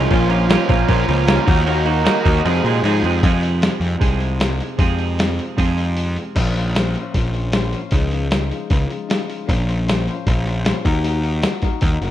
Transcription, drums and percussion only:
0.11 kick, crash
0.30 crash
0.50 snare, crash
0.69 kick, crash
0.88 kick, crash
1.08 crash
1.27 snare, crash
1.48 kick, crash
1.67 crash
1.86 crash
2.06 snare, crash
2.25 kick, crash
2.46 crash
2.66 crash
2.85 crash
3.04 crash
3.23 kick, open hi-hat
3.43 open hi-hat
3.62 snare, open hi-hat
3.82 open hi-hat
4.01 kick, open hi-hat
4.20 open hi-hat
4.40 snare, open hi-hat
4.60 open hi-hat
4.79 kick, open hi-hat
4.99 open hi-hat
5.19 snare, open hi-hat
5.39 open hi-hat
5.58 kick, open hi-hat
5.78 open hi-hat
5.97 open hi-hat
6.16 open hi-hat
6.36 kick, open hi-hat, crash
6.56 open hi-hat
6.75 snare, open hi-hat
6.95 open hi-hat
7.14 kick, open hi-hat
7.34 open hi-hat
7.52 snare, open hi-hat
7.73 open hi-hat
7.91 kick, open hi-hat
8.11 open hi-hat
8.31 snare, open hi-hat
8.51 open hi-hat
8.70 kick, open hi-hat
8.90 open hi-hat
9.10 snare, open hi-hat
9.30 open hi-hat
9.49 kick, open hi-hat
9.69 open hi-hat
9.88 snare, open hi-hat
10.08 open hi-hat
10.27 kick, open hi-hat
10.46 open hi-hat
10.65 snare, open hi-hat
10.85 kick, open hi-hat
11.04 open hi-hat
11.24 open hi-hat
11.42 snare, open hi-hat
11.62 kick, snare, open hi-hat
11.81 kick, open hi-hat
12.02 open hi-hat

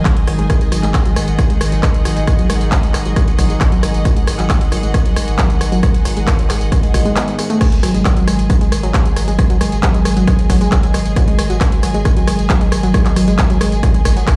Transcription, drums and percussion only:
0.05 kick, cross-stick, clap, closed hi-hat
0.17 closed hi-hat
0.27 cross-stick, open hi-hat
0.39 closed hi-hat
0.50 kick, cross-stick, closed hi-hat, tambourine
0.61 closed hi-hat, tambourine
0.72 cross-stick, open hi-hat, tambourine
0.83 clap, closed hi-hat, tambourine
0.94 kick, cross-stick, clap, closed hi-hat, tambourine
1.05 closed hi-hat, tambourine
1.16 cross-stick, open hi-hat, tambourine
1.28 closed hi-hat, tambourine
1.39 kick, cross-stick, closed hi-hat, tambourine
1.50 closed hi-hat, tambourine
1.61 cross-stick, open hi-hat, tambourine
1.72 closed hi-hat, tambourine
1.83 kick, cross-stick, clap, closed hi-hat, tambourine
1.94 closed hi-hat, tambourine
2.05 cross-stick, open hi-hat, tambourine
2.17 closed hi-hat, tambourine
2.27 kick, cross-stick, closed hi-hat, tambourine
2.39 closed hi-hat, tambourine
2.50 cross-stick, open hi-hat, tambourine
2.61 closed hi-hat, tambourine
2.72 kick, cross-stick, clap, closed hi-hat, tambourine
2.83 closed hi-hat, tambourine
2.94 cross-stick, clap, open hi-hat, tambourine
3.05 closed hi-hat, tambourine
3.16 kick, cross-stick, closed hi-hat, tambourine
3.28 closed hi-hat, tambourine
3.39 kick, cross-stick, open hi-hat, tambourine
3.50 closed hi-hat, tambourine
3.61 kick, cross-stick, clap, closed hi-hat, tambourine
3.72 closed hi-hat, tambourine
3.83 cross-stick, open hi-hat, tambourine
3.94 closed hi-hat, tambourine
4.05 kick, cross-stick, closed hi-hat, tambourine
4.17 closed hi-hat, tambourine
4.27 cross-stick, open hi-hat, tambourine
4.39 clap, closed hi-hat, tambourine
4.50 kick, cross-stick, clap, closed hi-hat, tambourine
4.61 closed hi-hat, tambourine
4.72 cross-stick, open hi-hat, tambourine
4.83 closed hi-hat, tambourine
4.94 kick, cross-stick, closed hi-hat, tambourine
5.06 closed hi-hat, tambourine
5.16 cross-stick, open hi-hat, tambourine
5.28 closed hi-hat, tambourine
5.39 kick, cross-stick, clap, closed hi-hat, tambourine
5.50 closed hi-hat, tambourine
5.61 cross-stick, open hi-hat, tambourine
5.72 closed hi-hat, tambourine
5.83 kick, cross-stick, closed hi-hat, tambourine
5.94 closed hi-hat, tambourine
6.05 cross-stick, open hi-hat, tambourine
6.17 closed hi-hat, tambourine
6.27 kick, cross-stick, clap, closed hi-hat, tambourine
6.39 closed hi-hat, tambourine
6.50 cross-stick, clap, open hi-hat, tambourine
6.61 closed hi-hat, tambourine
6.72 kick, cross-stick, closed hi-hat, tambourine
6.83 closed hi-hat, tambourine
6.94 kick, cross-stick, open hi-hat, tambourine
7.06 closed hi-hat, tambourine
7.16 cross-stick, clap, closed hi-hat, tambourine
7.28 closed hi-hat, tambourine
7.39 cross-stick, open hi-hat, tambourine
7.50 closed hi-hat, tambourine
7.61 kick, cross-stick, closed hi-hat, crash, tambourine
7.72 closed hi-hat, tambourine
7.83 cross-stick, open hi-hat, tambourine
7.94 closed hi-hat, tambourine
8.05 kick, cross-stick, clap, closed hi-hat, tambourine
8.17 closed hi-hat, tambourine
8.28 cross-stick, open hi-hat, tambourine
8.39 closed hi-hat, tambourine
8.50 kick, cross-stick, closed hi-hat, tambourine
8.61 closed hi-hat, tambourine
8.72 cross-stick, open hi-hat, tambourine
8.83 closed hi-hat, tambourine
8.94 kick, cross-stick, clap, closed hi-hat, tambourine
9.06 closed hi-hat, tambourine
9.16 cross-stick, open hi-hat, tambourine
9.28 closed hi-hat, tambourine
9.39 kick, cross-stick, closed hi-hat, tambourine
9.50 closed hi-hat, tambourine
9.61 cross-stick, open hi-hat, tambourine
9.72 closed hi-hat, tambourine
9.83 kick, cross-stick, clap, closed hi-hat, tambourine
9.94 closed hi-hat, tambourine
10.05 cross-stick, open hi-hat, tambourine
10.17 closed hi-hat, tambourine
10.27 kick, cross-stick, closed hi-hat, tambourine
10.39 closed hi-hat, tambourine
10.50 kick, cross-stick, open hi-hat, tambourine
10.61 closed hi-hat, tambourine
10.72 kick, cross-stick, clap, closed hi-hat, tambourine
10.83 closed hi-hat, tambourine
10.94 cross-stick, open hi-hat, tambourine
11.05 closed hi-hat, tambourine
11.16 kick, cross-stick, closed hi-hat, tambourine
11.28 closed hi-hat, tambourine
11.39 cross-stick, open hi-hat, tambourine
11.50 closed hi-hat, tambourine
11.61 kick, cross-stick, clap, closed hi-hat, tambourine
11.72 closed hi-hat, tambourine
11.83 cross-stick, open hi-hat, tambourine
11.94 closed hi-hat, tambourine
12.05 kick, cross-stick, closed hi-hat, tambourine
12.17 closed hi-hat, tambourine
12.27 cross-stick, open hi-hat, tambourine
12.39 closed hi-hat, tambourine
12.50 kick, cross-stick, clap, closed hi-hat, tambourine
12.61 closed hi-hat, tambourine
12.72 cross-stick, open hi-hat, tambourine
12.83 closed hi-hat, tambourine
12.94 kick, cross-stick, closed hi-hat, tambourine
13.06 clap, closed hi-hat, tambourine
13.16 cross-stick, open hi-hat, tambourine
13.28 closed hi-hat, tambourine
13.39 kick, cross-stick, clap, closed hi-hat, tambourine
13.50 closed hi-hat, tambourine
13.61 cross-stick, open hi-hat, tambourine
13.72 closed hi-hat, tambourine
13.83 kick, cross-stick, closed hi-hat, tambourine
13.94 closed hi-hat, tambourine
14.05 kick, cross-stick, open hi-hat, tambourine
14.17 closed hi-hat, tambourine
14.27 kick, cross-stick, clap, closed hi-hat, tambourine

